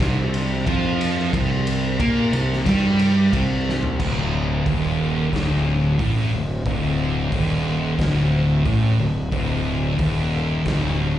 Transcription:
0.00 0.62 C2 loud
0.00 0.65 C3 loud
0.00 kick loud
0.00 snare loud
0.00 ride medium
0.34 ride medium
0.67 1.29 F2 loud
0.67 1.32 F3 loud
0.67 kick loud
0.67 ride loud
1.01 ride medium
1.32 1.96 C2 loud
1.32 1.98 C3 loud
1.32 kick loud
1.32 ride loud
1.67 ride medium
1.99 2.30 A#2 medium
1.99 2.32 A#3 loud
1.99 kick loud
1.99 ride loud
2.32 2.63 C2 medium
2.32 2.60 C3 medium
2.32 ride medium
2.53 snare soft
2.66 3.29 G2 loud
2.66 3.31 G3 loud
2.66 kick loud
2.66 snare loud
2.66 ride loud
2.99 ride medium
3.33 3.95 C2 loud
3.33 3.99 C3 loud
3.33 kick loud
3.33 ride loud
3.69 snare medium
3.83 floor tom medium
3.99 4.62 D1 medium
3.99 4.65 D2 loud
3.99 kick loud
3.99 crash medium
4.66 5.29 D#1 medium
4.66 5.32 D#2 loud
4.66 kick loud
4.66 open hi-hat medium
5.33 5.95 D1 medium
5.33 5.99 D2 loud
5.33 kick medium
5.33 snare loud
5.33 open hi-hat medium
5.99 6.30 A1 medium
5.99 6.32 A2 loud
5.99 kick loud
5.99 open hi-hat medium
6.33 6.64 D1 medium
6.33 6.60 D2 medium
6.66 7.29 D1 medium
6.66 7.32 D2 loud
6.66 kick loud
6.66 open hi-hat medium
7.32 7.95 D#1 medium
7.32 7.99 D#2 loud
7.32 kick loud
7.32 open hi-hat medium
7.98 8.62 D1 loud
7.98 8.66 D2 loud
7.98 kick medium
7.98 snare loud
7.98 open hi-hat medium
8.65 8.97 A1 loud
8.65 8.99 A2 loud
8.65 kick loud
8.65 open hi-hat medium
8.99 9.31 D1 medium
8.99 9.26 D2 medium
9.32 9.95 D1 loud
9.32 9.98 D2 loud
9.32 kick loud
9.32 open hi-hat medium
9.99 10.62 D#1 medium
9.99 10.65 D#2 loud
9.99 kick loud
9.99 open hi-hat medium
10.65 11.19 D1 medium
10.65 11.19 D2 loud
10.65 kick loud
10.65 snare loud
10.65 open hi-hat medium

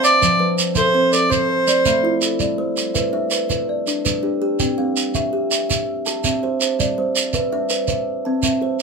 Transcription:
0.00 0.21 G4 medium
0.00 0.40 C5 medium
0.00 0.22 D5 medium
0.00 0.54 D5 loud
0.00 0.22 G5 medium
0.00 0.40 A5 medium
0.04 shekere medium
0.22 0.58 F3 medium
0.22 0.76 C5 medium
0.22 shekere medium
0.39 0.76 F3 medium
0.39 0.95 B4 medium
0.59 shekere medium
0.75 1.12 A4 medium
0.75 1.15 C5 medium
0.75 1.31 E5 medium
0.75 shekere medium
0.95 1.31 C4 medium
0.95 1.30 C5 medium
1.13 1.31 A4 medium
1.13 1.32 D5 medium
1.13 shekere medium
1.30 1.49 A4 medium
1.30 1.67 C5 medium
1.30 2.22 C5 medium
1.30 1.48 C5 medium
1.30 shekere medium
1.49 2.04 C5 medium
1.67 2.04 A3 medium
1.67 2.22 C5 medium
1.67 2.22 D5 medium
1.67 shekere medium
1.86 2.23 A3 medium
1.86 2.41 E5 medium
1.86 2.41 B5 medium
1.86 shekere medium
2.03 2.40 E4 medium
2.03 2.59 F4 medium
2.22 2.59 A4 medium
2.22 shekere medium
2.40 2.77 G3 medium
2.40 2.95 D5 medium
2.40 shekere medium
2.58 2.95 G3 medium
2.58 3.13 C5 medium
2.77 shekere medium
2.94 3.31 B4 medium
2.94 3.50 E5 medium
2.94 shekere medium
3.13 3.50 D4 medium
3.13 3.68 E5 medium
3.31 3.49 B4 medium
3.31 shekere medium
3.49 3.86 B4 medium
3.49 4.03 B4 medium
3.49 shekere medium
3.69 4.24 D5 medium
3.87 4.22 D4 medium
3.87 shekere medium
4.05 4.42 G3 medium
4.05 4.60 B4 medium
4.05 shekere medium
4.23 4.60 D4 medium
4.23 4.40 G4 medium
4.42 4.78 G4 medium
4.60 4.96 C4 medium
4.60 5.14 G5 medium
4.60 shekere medium
4.78 5.15 C4 medium
4.78 5.33 F5 medium
4.97 shekere medium
5.15 5.50 E5 medium
5.15 shekere medium
5.33 5.69 G4 medium
5.51 5.68 E5 medium
5.51 shekere medium
5.69 6.06 E5 medium
5.69 6.24 E5 medium
5.69 shekere medium
6.06 6.42 G4 medium
6.06 6.61 A5 medium
6.06 shekere medium
6.24 6.61 C4 medium
6.24 6.79 E5 medium
6.24 shekere medium
6.43 6.80 G4 medium
6.43 6.60 C5 medium
6.61 6.98 C5 medium
6.61 shekere medium
6.79 7.16 G3 medium
6.79 7.34 D5 medium
6.79 shekere medium
6.98 7.34 G3 medium
6.98 7.52 C5 medium
7.16 shekere medium
7.33 7.69 B4 medium
7.33 7.89 E5 medium
7.33 shekere medium
7.52 7.89 D4 medium
7.52 7.88 E5 medium
7.70 7.89 B4 medium
7.70 shekere medium
7.88 8.07 B4 medium
7.88 8.43 E5 medium
7.88 shekere medium
8.25 8.62 C4 medium
8.25 8.80 A5 medium
8.43 8.80 C4 medium
8.43 8.82 E5 medium
8.43 shekere medium
8.61 8.82 G4 medium
8.61 8.80 C5 medium

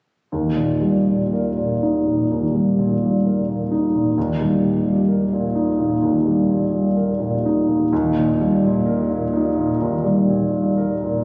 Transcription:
0.32 2.26 D#2 soft
0.56 0.96 A#2 soft
0.81 1.21 G3 soft
1.08 1.47 A#2 soft
1.33 1.72 A#4 soft
1.58 1.97 A#2 soft
1.83 2.21 D#4 soft
2.06 2.45 A#2 soft
2.31 4.13 D#2 soft
2.54 2.92 G3 soft
2.79 3.16 A#2 soft
3.03 3.39 G3 soft
3.26 3.62 A#4 soft
3.49 3.85 A#2 soft
3.71 4.08 D#4 soft
3.95 4.31 A#2 soft
4.18 5.98 D#2 soft
4.41 4.76 G3 soft
4.63 4.99 A#2 soft
4.86 5.22 G3 soft
5.08 5.45 A#4 soft
5.32 5.69 A#2 soft
5.55 5.92 D#4 soft
5.79 6.15 A#2 soft
6.02 7.88 D#2 soft
6.27 6.63 G3 soft
6.49 6.87 A#2 soft
6.73 7.11 G3 soft
6.97 7.35 A#4 soft
7.20 7.58 A#2 soft
7.45 7.83 D#4 soft
7.68 7.91 A#2 soft
7.93 9.77 D#2 medium
8.17 8.53 A#2 soft
8.41 8.77 G3 soft
8.64 9.01 A#2 soft
8.86 9.23 A#4 soft
9.10 9.47 A#2 soft
9.33 9.71 D#4 soft
9.58 9.95 A#2 soft
9.81 11.24 D#2 soft
10.04 10.43 G3 soft
10.29 10.68 A#2 soft
10.52 10.92 G3 soft
10.78 11.17 A#4 soft
11.04 11.24 A#2 soft

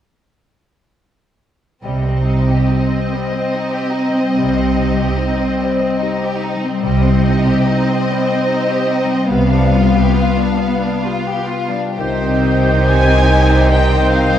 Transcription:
1.83 2.57 C2 soft
1.83 4.37 C3 soft
1.83 2.57 C3 soft
1.83 2.04 G3 soft
1.83 6.79 C4 soft
1.83 6.80 D#5 soft
2.04 2.27 C4 soft
2.13 4.08 G3 soft
2.26 2.49 D#4 soft
2.43 3.80 D#4 soft
2.49 2.71 G4 soft
2.70 2.92 D#4 soft
2.70 3.54 G4 soft
2.90 3.12 C4 soft
3.00 5.47 C5 soft
3.12 3.33 G3 soft
3.27 5.74 D#5 soft
3.32 3.53 C4 soft
3.53 3.74 D#4 soft
3.53 5.19 G4 soft
3.72 3.94 G4 soft
3.82 4.65 D#4 soft
3.92 4.15 D#4 soft
4.09 4.92 G3 soft
4.15 4.36 C4 soft
4.37 5.06 C2 soft
4.37 5.06 C3 soft
4.37 6.82 C3 soft
4.37 4.57 G3 soft
4.57 4.78 C4 soft
4.66 6.29 D#4 soft
4.77 4.99 D#4 soft
4.93 6.54 G3 soft
4.99 5.20 G4 soft
5.18 5.39 D#4 soft
5.18 6.01 G4 soft
5.38 5.60 C4 soft
5.48 7.93 C5 soft
5.60 5.81 G3 soft
5.75 8.21 D#5 soft
5.81 6.01 C4 soft
6.01 6.22 D#4 soft
6.01 7.66 G4 soft
6.22 6.43 G4 soft
6.30 7.38 D#4 soft
6.42 6.63 D#4 soft
6.56 7.10 G3 soft
6.63 6.84 C4 soft
6.82 7.54 C2 soft
6.82 9.30 C3 soft
6.82 7.54 C3 soft
6.82 7.03 G3 soft
6.82 9.28 C4 soft
6.82 9.28 D#5 soft
7.04 7.25 C4 soft
7.11 9.03 G3 soft
7.25 7.47 D#4 soft
7.39 8.75 D#4 soft
7.45 7.67 G4 soft
7.66 7.88 D#4 soft
7.66 8.47 G4 soft
7.87 8.08 C4 soft
7.95 9.35 C5 soft
8.10 8.30 G3 soft
8.22 9.35 D#5 soft
8.30 8.50 C4 soft
8.48 8.71 D#4 soft
8.48 10.16 G4 soft
8.70 8.91 G4 soft
8.76 9.35 D#4 soft
8.89 9.11 D#4 soft
9.04 9.58 G3 soft
9.10 9.32 C4 soft
9.30 10.03 C2 soft
9.30 11.97 C3 soft
9.30 10.03 C3 soft
9.30 11.73 B3 soft
9.30 9.52 B3 soft
9.30 11.74 F5 soft
9.52 9.74 D4 soft
9.59 11.67 G3 soft
9.73 9.95 F4 soft
9.87 11.35 F4 soft
9.95 10.17 G4 soft
10.17 10.39 F4 soft
10.17 11.04 G4 soft
10.38 10.61 D4 soft
10.46 12.02 B4 soft
10.58 10.82 B3 soft
10.75 12.02 F5 soft
10.81 11.05 D4 soft
11.05 11.29 F4 soft
11.05 12.42 G4 soft
11.27 11.52 G4 soft
11.36 12.02 F4 soft
11.48 11.74 F4 soft
11.68 14.12 G3 soft
11.68 11.96 D4 soft
11.94 14.39 C3 soft
11.94 14.39 C4 soft
11.94 14.39 D#4 soft
11.94 14.39 G4 soft
11.94 14.39 C5 soft
11.94 13.67 C5 soft
11.99 14.39 C2 soft
11.99 14.39 C3 soft
11.99 13.68 D#3 soft
11.99 14.39 G3 soft
11.99 14.39 D#4 soft
11.99 13.69 G6 soft
12.21 13.90 D#4 soft
12.43 13.69 G4 soft
12.64 13.48 C5 soft
12.86 13.26 D#5 soft
12.86 13.68 G#5 medium
13.06 14.39 G5 soft
13.28 14.39 D#5 soft
13.50 14.39 C5 soft
13.70 14.39 D#3 soft
13.70 14.39 G4 soft
13.70 14.39 C5 soft
13.70 14.14 G5 soft
13.70 14.39 G6 soft
13.92 14.32 D#4 soft
14.13 14.39 G3 soft
14.13 14.39 F5 medium
14.33 14.39 D#4 soft

